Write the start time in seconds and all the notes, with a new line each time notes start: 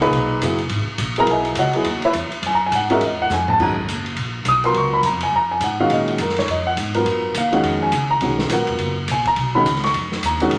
Already playing: C#2
0.01 A#2 D#4 G#4 B4, ride
0.12 B1, ride
0.41 F#1 F#3 B3 E4 G#4, hi-hat pedal, ride
0.58 ride
0.69 G#1, ride
0.87 muted upright bass stroke
0.98 A#1, hi-hat pedal, ride
1.16 F#3 B3 E4 G#4 A#4 A#5, ride
1.27 B1, ride
1.31 G#4 D#5 E5 G#5
1.45 ride
1.55 C#2 F#4 C#5 D#5 F#5, hi-hat pedal, ride
1.73 F#3 B3 E4 G#4, muted upright bass stroke, ride
1.84 D#2, ride
2.02 E4 B4 C#5 E5, ride
2.13 E2, hi-hat pedal, ride
2.31 muted upright bass stroke, ride
2.42 F#2, ride
2.46 G#5
2.55 A#5
2.66 G#5
2.71 G#2 F#5, hi-hat pedal, ride
2.90 G#3 C#4 F#4 A#4 E5, ride
3.00 E2, ride
3.06 D#5
3.22 F#5
3.29 F2, snare, hi-hat pedal
3.33 G#5
3.48 A5, floor tom
3.59 F#2 D#3 G#3 C#4 F#4 A#5, kick, crash
3.77 kick
3.88 F#1, hi-hat pedal, ride
4.06 ride
4.17 A#1, ride
4.45 B1 D#6, hi-hat pedal, ride
4.64 F#3 B3 F4 A#4 C6, ride
4.74 C#2 C#6, ride
4.93 B5
5.03 F#2 A#5, hi-hat pedal, ride
5.12 F2
5.21 C#2 G#5, ride
5.32 F2 A#5
5.51 G#5
5.60 G#2 F#5, hi-hat pedal, ride
5.80 D#3 G#3 C#4 F#4 F5
5.90 A#2 D#5, ride
6.08 F#4, ride
6.18 F#2 A#4, hi-hat pedal, ride
6.29 snare
6.36 C#5, snare, ride
6.48 F2 D#5, ride
6.67 F#5
6.76 G#2, hi-hat pedal, ride
6.94 F#3 B3 F4 A#4, ride
7.05 F#2, ride
7.34 D#2 F5, hi-hat pedal, ride
7.52 D#3 G#3 C#4 F#4 F#5, ride
7.63 F2, ride
7.83 G#5
7.92 C#2, hi-hat pedal, ride
8.10 A#5
8.21 B1 D#3 G#3 C#4 F#4, ride
8.39 snare
8.49 A#1 F#3 B3 F4 A#4 F#5, hi-hat pedal, ride
8.59 F#1
8.67 D#1, ride
8.79 F#1, ride
9.08 A#1 G#5, hi-hat pedal, ride
9.26 A#5, kick, ride
9.36 B1, ride
9.55 D#3 G#3 C#4 F#4 B5
9.66 C#2, hi-hat pedal, ride
9.75 snare
9.84 C#6, snare, ride
9.94 F2, ride
10.12 snare
10.23 D#2 A#5, hi-hat pedal, ride
10.40 D#3 G#3 C#4 F#4, ride
10.51 F#2, ride